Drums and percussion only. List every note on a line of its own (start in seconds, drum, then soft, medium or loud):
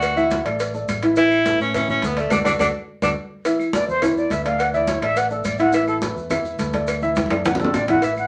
0.02 cowbell loud
0.02 high conga soft
0.02 claves medium
0.02 maracas medium
0.17 high conga soft
0.17 maracas soft
0.30 cowbell medium
0.30 high conga medium
0.30 maracas medium
0.45 cowbell medium
0.45 high conga soft
0.45 claves medium
0.45 maracas soft
0.59 cowbell loud
0.59 high conga soft
0.59 maracas medium
0.74 high conga soft
0.74 maracas soft
0.88 cowbell medium
0.88 high conga medium
0.88 claves medium
0.88 maracas medium
1.02 cowbell medium
1.02 high conga soft
1.02 maracas soft
1.16 cowbell loud
1.16 high conga soft
1.16 maracas medium
1.31 high conga soft
1.31 claves medium
1.31 maracas soft
1.46 cowbell medium
1.46 high conga loud
1.46 maracas medium
1.60 high conga soft
1.60 maracas soft
1.74 cowbell loud
1.74 high conga soft
1.74 low conga medium
1.74 claves medium
1.74 maracas medium
1.88 high conga soft
1.88 low conga medium
1.88 maracas soft
2.02 cowbell medium
2.02 high conga medium
2.02 maracas medium
2.17 cowbell medium
2.17 maracas soft
2.30 cowbell loud
2.30 high conga loud
2.30 claves loud
2.30 maracas loud
2.45 cowbell loud
2.45 high conga loud
2.45 claves loud
2.45 maracas loud
2.59 cowbell loud
2.59 high conga loud
2.59 claves loud
2.59 maracas loud
3.02 cowbell loud
3.02 high conga loud
3.02 claves medium
3.02 maracas medium
3.45 cowbell loud
3.45 high conga soft
3.45 maracas medium
3.59 high conga soft
3.59 claves medium
3.59 maracas soft
3.73 cowbell medium
3.73 high conga loud
3.73 maracas medium
3.88 high conga soft
3.88 maracas soft
4.02 cowbell loud
4.02 high conga soft
4.02 low conga medium
4.02 claves medium
4.02 maracas medium
4.16 high conga soft
4.16 maracas soft
4.30 cowbell medium
4.30 high conga medium
4.30 maracas medium
4.45 cowbell medium
4.45 maracas soft
4.58 cowbell loud
4.58 high conga soft
4.58 claves medium
4.58 maracas medium
4.73 high conga soft
4.73 maracas soft
4.87 cowbell medium
4.87 high conga loud
4.87 maracas medium
5.02 cowbell medium
5.02 high conga soft
5.02 claves medium
5.02 maracas soft
5.16 cowbell loud
5.16 high conga soft
5.16 maracas medium
5.30 high conga soft
5.30 maracas soft
5.44 cowbell medium
5.44 high conga medium
5.44 claves medium
5.44 maracas medium
5.58 cowbell medium
5.58 high conga soft
5.58 maracas soft
5.72 cowbell loud
5.72 high conga soft
5.72 maracas medium
5.87 high conga soft
5.87 claves medium
5.87 maracas soft
6.02 cowbell medium
6.02 high conga loud
6.02 maracas medium
6.16 high conga soft
6.16 maracas soft
6.30 cowbell loud
6.30 high conga soft
6.30 low conga medium
6.30 claves medium
6.30 maracas medium
6.45 high conga soft
6.45 maracas soft
6.59 cowbell medium
6.59 high conga medium
6.59 maracas medium
6.73 cowbell medium
6.73 high conga medium
6.73 maracas soft
6.87 cowbell loud
6.87 high conga soft
6.87 claves medium
6.87 maracas medium
7.02 high conga soft
7.02 maracas soft
7.16 cowbell medium
7.16 high bongo loud
7.16 high conga medium
7.16 maracas medium
7.26 high conga medium
7.26 maracas soft
7.30 cowbell medium
7.30 high bongo loud
7.30 claves medium
7.45 cowbell loud
7.45 high bongo loud
7.45 low conga medium
7.45 maracas medium
7.55 low conga loud
7.59 low bongo medium
7.59 maracas soft
7.64 low conga loud
7.74 cowbell medium
7.74 low conga medium
7.74 claves medium
7.74 maracas medium
7.88 cowbell medium
7.88 low bongo loud
7.88 maracas soft
7.93 low conga medium
8.02 cowbell loud
8.02 high conga soft
8.02 maracas medium
8.17 high conga soft
8.17 claves medium
8.17 maracas soft